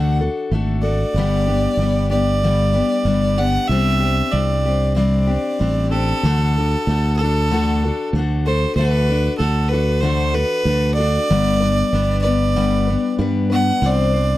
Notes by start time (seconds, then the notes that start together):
Already playing: D2 D3 A3 D4 F#4 A4 F#5
0.21 D4 F#4 A4
0.51 G#1 A3 D4 F#4 A4
0.82 F#4 A4 D5
0.86 D4
1.14 G1 G2 D3 G3 B3
1.18 D4 G4
1.46 G3 B3 D4 G4
1.77 G1 G3 B3 D4
1.83 G4
2.10 G3 B3 D4 G4 D5
2.43 G2 D3 G3 B3 D4 G4
2.74 G3 B3 D4 G4
3.05 G1 G3 B3 D4 G4
3.37 G3 B3 D4 G4 F#5
3.68 C2 C3 G3 C4 E5
3.72 D4 G4
4.00 C4 D4 G4
4.32 C2 G3 C4 D4 G4 D5
4.66 C4 D4 G4
4.96 C3 G3 C4 D4 G4 D5
5.27 C4 D4 G4
5.59 A1 G3 C4 D4 G4
5.91 C4 D4 G4 A4
6.23 D2 D3 A3 D4 F#4 A4
6.57 D4 F#4 A4
6.87 D2 A3 D4 F#4
6.91 A4
7.17 A4
7.21 D4 F#4 A4
7.51 D3 A3 D4 F#4 A4
7.84 D4 F#4 A4
8.13 D2 A3 D4
8.18 F#4 A4
8.46 D4 F#4 A4 C5
8.75 D2 D3 A3 B4
8.80 D4 F#4 A4
9.08 D4 F#4 A4
9.38 D2 A3 D4 F#4 A4
9.69 A4 B4
9.73 D4 F#4
10.01 D3 A3 D4 F#4 A4 C5
10.34 D4 F#4 A4 B4
10.65 D2 A3 D4 F#4 A4
10.94 A4 D5
10.99 D4 F#4
11.30 G1 G2 D3 G3 B3 D4 B4
11.60 G3 B3 D4 B4
11.92 G1 G3 B3 D4 B4
12.22 D4 B4 D5
12.26 G3 B3
12.56 G2 D3 G3 B3 D4 B4
12.87 G3 B3 D4 B4
13.18 G2 G3 B3 D4 B4
13.50 G3 B3 D4 B4 F#5
13.82 C2 C3 G3 C4 D4 C5
13.86 D5
14.14 C4 D4 C5